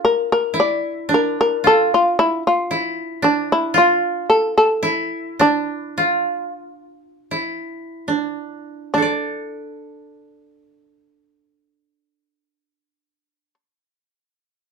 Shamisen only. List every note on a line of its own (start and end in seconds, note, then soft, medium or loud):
0.05 0.29 A#4 medium
0.32 0.56 A#4 medium
0.60 1.09 D5 medium
1.14 1.37 A#4 medium
1.41 1.64 A#4 medium
1.67 1.90 A4 medium
1.94 2.17 F4 medium
2.19 2.42 E4 medium
2.47 3.20 F4 medium
3.24 3.47 D4 medium
3.52 3.74 E4 medium
3.78 4.25 F4 medium
4.30 4.54 A4 medium
4.58 5.37 A4 medium
5.41 8.05 D4 medium
8.94 13.54 D4 soft